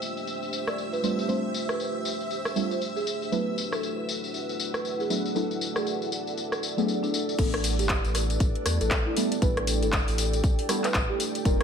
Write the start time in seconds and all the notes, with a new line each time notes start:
Already playing: G3 A3 C4 D4 F4 G4 C5 E5 G5 E6
0.02 tambourine
0.17 tambourine
0.27 tambourine
0.43 tambourine
0.53 tambourine
0.67 D5, cross-stick, tambourine
0.78 tambourine
0.93 B4, tambourine
1.03 G3 A3 C4 D4 F4, tambourine
1.19 tambourine
1.28 G3 A3 C4 D4 F4 C5, tambourine
1.54 tambourine
1.69 B4, cross-stick, tambourine
1.80 tambourine
2.05 tambourine
2.20 tambourine
2.31 tambourine
2.45 cross-stick, tambourine
2.55 G3 A3 C4 D4 F4, tambourine
2.71 C5, tambourine
2.82 tambourine
2.96 G#4, tambourine
3.06 A3 D4 E4 F#4 B4, tambourine
3.22 tambourine
3.29 F#3 A3 B3 D4 E4 A4 B4, tambourine
3.52 F#5
3.58 tambourine
3.66 D5
3.72 A4, cross-stick, tambourine
3.83 tambourine
4.09 tambourine
4.24 tambourine
4.34 tambourine
4.49 tambourine
4.60 tambourine
4.74 B4, cross-stick, tambourine
4.85 tambourine
5.00 G#4, tambourine
5.09 F#3 A3 B3 D4 E4, tambourine
5.26 tambourine
5.35 F#3 A3 B3 D4 E4 A4, tambourine
5.51 tambourine
5.61 tambourine
5.76 G#4, cross-stick, tambourine
5.87 tambourine
6.02 tambourine
6.12 tambourine
6.27 tambourine
6.37 tambourine
6.52 cross-stick, tambourine
6.63 tambourine
6.77 F#3 A3 B3 D4 G#4, tambourine
6.88 tambourine
7.03 D4, tambourine
7.14 tambourine
7.29 tambourine
7.38 A1 G3 A3 B3 D4 E4 G4 A4 B4, kick, closed hi-hat, crash, tambourine
7.54 cross-stick, closed hi-hat
7.64 open hi-hat, tambourine
7.79 G1 G4, closed hi-hat, tambourine
7.89 kick, clap, closed hi-hat, tambourine
8.05 A1, closed hi-hat, tambourine
8.12 G5, cross-stick, open hi-hat, tambourine
8.30 closed hi-hat, tambourine
8.40 A1, kick, closed hi-hat, tambourine
8.55 closed hi-hat
8.66 E2, cross-stick, open hi-hat, tambourine
8.81 A1 A4, closed hi-hat, tambourine
8.91 kick, clap, closed hi-hat, tambourine
9.06 E4
9.16 G3 A3 B3 D4 E4, open hi-hat, tambourine
9.32 closed hi-hat, tambourine
9.41 A1 G3 A3 B3 D4 E4 A4 B4, kick, closed hi-hat, tambourine
9.57 cross-stick, closed hi-hat
9.67 open hi-hat, tambourine
9.83 G1 A4, closed hi-hat, tambourine
9.92 kick, clap, closed hi-hat, tambourine
10.08 A1, open hi-hat, tambourine
10.18 open hi-hat, tambourine
10.33 closed hi-hat, tambourine
10.44 kick, closed hi-hat, tambourine
10.59 open hi-hat
10.68 G3 A3 B3 D4 E4, cross-stick, open hi-hat, tambourine
10.84 B4, clap, closed hi-hat, tambourine
10.94 A1, kick, clap, closed hi-hat, tambourine
11.10 G4
11.20 open hi-hat, tambourine
11.35 closed hi-hat, tambourine
11.45 F1 G3 A#3 C4 D#4 F4 A#4 C5, kick, closed hi-hat, tambourine